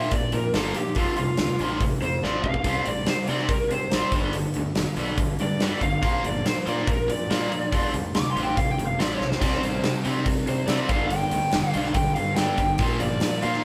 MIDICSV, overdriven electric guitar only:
0, 0, Header, 1, 2, 480
1, 0, Start_track
1, 0, Tempo, 422833
1, 1099, Time_signature, 4, 2, 24, 8
1, 15484, End_track
2, 0, Start_track
2, 0, Title_t, "Overdriven electric guitar"
2, 0, Program_c, 0, 29
2, 0, Note_on_c, 0, 46, 84
2, 0, Note_on_c, 0, 53, 94
2, 0, Note_on_c, 0, 58, 100
2, 118, Note_off_c, 0, 46, 0
2, 124, Note_off_c, 0, 53, 0
2, 125, Note_off_c, 0, 58, 0
2, 135, Note_on_c, 0, 46, 76
2, 140, Note_on_c, 0, 53, 78
2, 354, Note_off_c, 0, 46, 0
2, 356, Note_off_c, 0, 53, 0
2, 372, Note_on_c, 0, 46, 70
2, 376, Note_on_c, 0, 53, 83
2, 592, Note_off_c, 0, 46, 0
2, 594, Note_off_c, 0, 53, 0
2, 612, Note_on_c, 0, 46, 82
2, 622, Note_on_c, 0, 53, 84
2, 631, Note_on_c, 0, 58, 105
2, 841, Note_off_c, 0, 46, 0
2, 843, Note_off_c, 0, 53, 0
2, 851, Note_off_c, 0, 58, 0
2, 857, Note_on_c, 0, 53, 82
2, 862, Note_on_c, 0, 46, 75
2, 1074, Note_off_c, 0, 53, 0
2, 1077, Note_off_c, 0, 46, 0
2, 1089, Note_on_c, 0, 41, 89
2, 1097, Note_on_c, 0, 48, 79
2, 1105, Note_on_c, 0, 53, 97
2, 1319, Note_off_c, 0, 41, 0
2, 1323, Note_off_c, 0, 48, 0
2, 1327, Note_off_c, 0, 53, 0
2, 1344, Note_on_c, 0, 41, 64
2, 1348, Note_on_c, 0, 48, 80
2, 1557, Note_off_c, 0, 41, 0
2, 1559, Note_off_c, 0, 48, 0
2, 1582, Note_on_c, 0, 41, 67
2, 1587, Note_on_c, 0, 48, 81
2, 1796, Note_off_c, 0, 41, 0
2, 1798, Note_off_c, 0, 48, 0
2, 1815, Note_on_c, 0, 41, 88
2, 1824, Note_on_c, 0, 48, 92
2, 1833, Note_on_c, 0, 53, 93
2, 2042, Note_off_c, 0, 41, 0
2, 2046, Note_off_c, 0, 48, 0
2, 2050, Note_off_c, 0, 53, 0
2, 2060, Note_on_c, 0, 41, 70
2, 2066, Note_on_c, 0, 48, 87
2, 2274, Note_off_c, 0, 41, 0
2, 2277, Note_off_c, 0, 48, 0
2, 2303, Note_on_c, 0, 41, 72
2, 2313, Note_on_c, 0, 48, 73
2, 2516, Note_off_c, 0, 41, 0
2, 2520, Note_off_c, 0, 48, 0
2, 2534, Note_on_c, 0, 41, 92
2, 2538, Note_on_c, 0, 48, 92
2, 2544, Note_on_c, 0, 53, 92
2, 2761, Note_off_c, 0, 41, 0
2, 2762, Note_off_c, 0, 48, 0
2, 2765, Note_off_c, 0, 53, 0
2, 2783, Note_on_c, 0, 41, 72
2, 2786, Note_on_c, 0, 48, 67
2, 2995, Note_off_c, 0, 41, 0
2, 2997, Note_off_c, 0, 48, 0
2, 3016, Note_on_c, 0, 48, 88
2, 3024, Note_on_c, 0, 55, 90
2, 3030, Note_on_c, 0, 60, 84
2, 3241, Note_off_c, 0, 48, 0
2, 3245, Note_off_c, 0, 55, 0
2, 3248, Note_off_c, 0, 60, 0
2, 3261, Note_on_c, 0, 48, 59
2, 3266, Note_on_c, 0, 55, 70
2, 3472, Note_off_c, 0, 48, 0
2, 3476, Note_off_c, 0, 55, 0
2, 3485, Note_on_c, 0, 48, 73
2, 3491, Note_on_c, 0, 55, 84
2, 3706, Note_off_c, 0, 48, 0
2, 3709, Note_off_c, 0, 55, 0
2, 3732, Note_on_c, 0, 48, 80
2, 3738, Note_on_c, 0, 55, 85
2, 3742, Note_on_c, 0, 60, 97
2, 3959, Note_off_c, 0, 48, 0
2, 3962, Note_off_c, 0, 55, 0
2, 3964, Note_off_c, 0, 60, 0
2, 3977, Note_on_c, 0, 48, 71
2, 3983, Note_on_c, 0, 55, 76
2, 4192, Note_off_c, 0, 48, 0
2, 4195, Note_off_c, 0, 55, 0
2, 4226, Note_on_c, 0, 48, 77
2, 4228, Note_on_c, 0, 55, 77
2, 4436, Note_off_c, 0, 48, 0
2, 4437, Note_off_c, 0, 55, 0
2, 4463, Note_on_c, 0, 48, 92
2, 4467, Note_on_c, 0, 55, 91
2, 4469, Note_on_c, 0, 60, 92
2, 4684, Note_off_c, 0, 48, 0
2, 4686, Note_off_c, 0, 55, 0
2, 4687, Note_off_c, 0, 60, 0
2, 4704, Note_on_c, 0, 43, 92
2, 4708, Note_on_c, 0, 50, 95
2, 4713, Note_on_c, 0, 55, 93
2, 4924, Note_off_c, 0, 43, 0
2, 4926, Note_off_c, 0, 50, 0
2, 4929, Note_off_c, 0, 55, 0
2, 4937, Note_on_c, 0, 43, 74
2, 4942, Note_on_c, 0, 50, 84
2, 5151, Note_off_c, 0, 43, 0
2, 5154, Note_off_c, 0, 50, 0
2, 5177, Note_on_c, 0, 43, 78
2, 5184, Note_on_c, 0, 50, 85
2, 5391, Note_off_c, 0, 43, 0
2, 5395, Note_off_c, 0, 50, 0
2, 5416, Note_on_c, 0, 43, 68
2, 5422, Note_on_c, 0, 50, 78
2, 5625, Note_off_c, 0, 43, 0
2, 5627, Note_off_c, 0, 50, 0
2, 5638, Note_on_c, 0, 43, 82
2, 5640, Note_on_c, 0, 50, 93
2, 5647, Note_on_c, 0, 55, 90
2, 5872, Note_off_c, 0, 43, 0
2, 5873, Note_off_c, 0, 50, 0
2, 5876, Note_off_c, 0, 55, 0
2, 5891, Note_on_c, 0, 43, 67
2, 5893, Note_on_c, 0, 50, 85
2, 6108, Note_off_c, 0, 43, 0
2, 6109, Note_off_c, 0, 50, 0
2, 6126, Note_on_c, 0, 43, 74
2, 6133, Note_on_c, 0, 50, 78
2, 6346, Note_off_c, 0, 43, 0
2, 6349, Note_off_c, 0, 50, 0
2, 6376, Note_on_c, 0, 43, 88
2, 6377, Note_on_c, 0, 50, 82
2, 6384, Note_on_c, 0, 55, 92
2, 6601, Note_off_c, 0, 43, 0
2, 6601, Note_off_c, 0, 50, 0
2, 6604, Note_off_c, 0, 55, 0
2, 6612, Note_on_c, 0, 43, 74
2, 6615, Note_on_c, 0, 50, 86
2, 6829, Note_off_c, 0, 43, 0
2, 6831, Note_off_c, 0, 50, 0
2, 6837, Note_on_c, 0, 53, 89
2, 6839, Note_on_c, 0, 46, 86
2, 6847, Note_on_c, 0, 58, 101
2, 7068, Note_off_c, 0, 46, 0
2, 7069, Note_off_c, 0, 53, 0
2, 7076, Note_off_c, 0, 58, 0
2, 7082, Note_on_c, 0, 46, 66
2, 7082, Note_on_c, 0, 53, 82
2, 7304, Note_off_c, 0, 46, 0
2, 7304, Note_off_c, 0, 53, 0
2, 7329, Note_on_c, 0, 46, 71
2, 7335, Note_on_c, 0, 53, 80
2, 7544, Note_off_c, 0, 46, 0
2, 7551, Note_off_c, 0, 53, 0
2, 7558, Note_on_c, 0, 46, 87
2, 7564, Note_on_c, 0, 53, 95
2, 7570, Note_on_c, 0, 58, 110
2, 7786, Note_off_c, 0, 46, 0
2, 7787, Note_off_c, 0, 53, 0
2, 7798, Note_off_c, 0, 58, 0
2, 7800, Note_on_c, 0, 46, 77
2, 7801, Note_on_c, 0, 53, 88
2, 8023, Note_off_c, 0, 46, 0
2, 8023, Note_off_c, 0, 53, 0
2, 8039, Note_on_c, 0, 46, 74
2, 8040, Note_on_c, 0, 53, 82
2, 8262, Note_off_c, 0, 46, 0
2, 8263, Note_off_c, 0, 53, 0
2, 8290, Note_on_c, 0, 46, 83
2, 8294, Note_on_c, 0, 53, 92
2, 8298, Note_on_c, 0, 58, 99
2, 8514, Note_off_c, 0, 53, 0
2, 8518, Note_off_c, 0, 46, 0
2, 8522, Note_off_c, 0, 58, 0
2, 8528, Note_on_c, 0, 53, 83
2, 8529, Note_on_c, 0, 46, 70
2, 8747, Note_off_c, 0, 53, 0
2, 8748, Note_off_c, 0, 46, 0
2, 8766, Note_on_c, 0, 41, 75
2, 8771, Note_on_c, 0, 48, 82
2, 8777, Note_on_c, 0, 53, 86
2, 8996, Note_off_c, 0, 41, 0
2, 8999, Note_off_c, 0, 48, 0
2, 9001, Note_off_c, 0, 53, 0
2, 9012, Note_on_c, 0, 41, 63
2, 9019, Note_on_c, 0, 48, 66
2, 9230, Note_off_c, 0, 41, 0
2, 9233, Note_off_c, 0, 48, 0
2, 9251, Note_on_c, 0, 41, 75
2, 9258, Note_on_c, 0, 48, 90
2, 9469, Note_off_c, 0, 41, 0
2, 9473, Note_off_c, 0, 48, 0
2, 9487, Note_on_c, 0, 41, 95
2, 9487, Note_on_c, 0, 48, 86
2, 9494, Note_on_c, 0, 53, 97
2, 9714, Note_off_c, 0, 41, 0
2, 9717, Note_off_c, 0, 48, 0
2, 9720, Note_off_c, 0, 53, 0
2, 9727, Note_on_c, 0, 41, 72
2, 9737, Note_on_c, 0, 48, 80
2, 9947, Note_off_c, 0, 41, 0
2, 9952, Note_off_c, 0, 48, 0
2, 9970, Note_on_c, 0, 41, 82
2, 9974, Note_on_c, 0, 48, 88
2, 10189, Note_off_c, 0, 41, 0
2, 10191, Note_off_c, 0, 48, 0
2, 10207, Note_on_c, 0, 41, 75
2, 10207, Note_on_c, 0, 48, 88
2, 10212, Note_on_c, 0, 53, 102
2, 10417, Note_off_c, 0, 41, 0
2, 10420, Note_off_c, 0, 48, 0
2, 10430, Note_on_c, 0, 41, 69
2, 10434, Note_on_c, 0, 48, 75
2, 10440, Note_off_c, 0, 53, 0
2, 10656, Note_off_c, 0, 48, 0
2, 10659, Note_off_c, 0, 41, 0
2, 10670, Note_on_c, 0, 48, 77
2, 10682, Note_on_c, 0, 55, 91
2, 10686, Note_on_c, 0, 60, 97
2, 10908, Note_off_c, 0, 48, 0
2, 10915, Note_off_c, 0, 55, 0
2, 10917, Note_off_c, 0, 60, 0
2, 10926, Note_on_c, 0, 48, 69
2, 10930, Note_on_c, 0, 55, 76
2, 11143, Note_off_c, 0, 48, 0
2, 11149, Note_off_c, 0, 55, 0
2, 11156, Note_on_c, 0, 48, 67
2, 11166, Note_on_c, 0, 55, 77
2, 11383, Note_off_c, 0, 48, 0
2, 11387, Note_off_c, 0, 55, 0
2, 11398, Note_on_c, 0, 48, 85
2, 11412, Note_on_c, 0, 55, 89
2, 11412, Note_on_c, 0, 60, 95
2, 11628, Note_off_c, 0, 48, 0
2, 11640, Note_off_c, 0, 55, 0
2, 11640, Note_off_c, 0, 60, 0
2, 11642, Note_on_c, 0, 48, 78
2, 11651, Note_on_c, 0, 55, 77
2, 11865, Note_off_c, 0, 48, 0
2, 11870, Note_off_c, 0, 55, 0
2, 11900, Note_on_c, 0, 48, 65
2, 11905, Note_on_c, 0, 55, 77
2, 12114, Note_off_c, 0, 48, 0
2, 12117, Note_off_c, 0, 55, 0
2, 12128, Note_on_c, 0, 48, 83
2, 12133, Note_on_c, 0, 55, 90
2, 12137, Note_on_c, 0, 60, 92
2, 12358, Note_off_c, 0, 48, 0
2, 12361, Note_off_c, 0, 55, 0
2, 12363, Note_off_c, 0, 60, 0
2, 12371, Note_on_c, 0, 43, 99
2, 12377, Note_on_c, 0, 50, 101
2, 12382, Note_on_c, 0, 55, 96
2, 12600, Note_off_c, 0, 43, 0
2, 12603, Note_off_c, 0, 50, 0
2, 12605, Note_off_c, 0, 55, 0
2, 12623, Note_on_c, 0, 43, 70
2, 12624, Note_on_c, 0, 50, 78
2, 12836, Note_off_c, 0, 43, 0
2, 12837, Note_off_c, 0, 50, 0
2, 12861, Note_on_c, 0, 43, 62
2, 12868, Note_on_c, 0, 50, 72
2, 13075, Note_off_c, 0, 43, 0
2, 13079, Note_off_c, 0, 50, 0
2, 13095, Note_on_c, 0, 43, 70
2, 13102, Note_on_c, 0, 50, 84
2, 13310, Note_off_c, 0, 43, 0
2, 13315, Note_off_c, 0, 50, 0
2, 13323, Note_on_c, 0, 43, 90
2, 13334, Note_on_c, 0, 55, 92
2, 13335, Note_on_c, 0, 50, 93
2, 13556, Note_off_c, 0, 43, 0
2, 13561, Note_off_c, 0, 55, 0
2, 13562, Note_off_c, 0, 50, 0
2, 13580, Note_on_c, 0, 43, 68
2, 13581, Note_on_c, 0, 50, 86
2, 13792, Note_off_c, 0, 43, 0
2, 13795, Note_off_c, 0, 50, 0
2, 13805, Note_on_c, 0, 43, 73
2, 13816, Note_on_c, 0, 50, 78
2, 14027, Note_off_c, 0, 43, 0
2, 14032, Note_off_c, 0, 50, 0
2, 14048, Note_on_c, 0, 43, 89
2, 14050, Note_on_c, 0, 50, 94
2, 14057, Note_on_c, 0, 55, 98
2, 14269, Note_off_c, 0, 43, 0
2, 14273, Note_off_c, 0, 50, 0
2, 14283, Note_off_c, 0, 55, 0
2, 14283, Note_on_c, 0, 43, 69
2, 14286, Note_on_c, 0, 50, 80
2, 14506, Note_off_c, 0, 43, 0
2, 14508, Note_off_c, 0, 50, 0
2, 14534, Note_on_c, 0, 46, 89
2, 14536, Note_on_c, 0, 53, 89
2, 14543, Note_on_c, 0, 58, 88
2, 14756, Note_off_c, 0, 46, 0
2, 14762, Note_off_c, 0, 53, 0
2, 14766, Note_off_c, 0, 58, 0
2, 14769, Note_on_c, 0, 46, 68
2, 14774, Note_on_c, 0, 53, 76
2, 14989, Note_off_c, 0, 46, 0
2, 14991, Note_off_c, 0, 53, 0
2, 15015, Note_on_c, 0, 46, 75
2, 15016, Note_on_c, 0, 53, 86
2, 15222, Note_off_c, 0, 46, 0
2, 15233, Note_off_c, 0, 53, 0
2, 15236, Note_on_c, 0, 46, 84
2, 15245, Note_on_c, 0, 53, 94
2, 15252, Note_on_c, 0, 58, 93
2, 15472, Note_off_c, 0, 46, 0
2, 15477, Note_off_c, 0, 53, 0
2, 15480, Note_off_c, 0, 58, 0
2, 15484, End_track
0, 0, End_of_file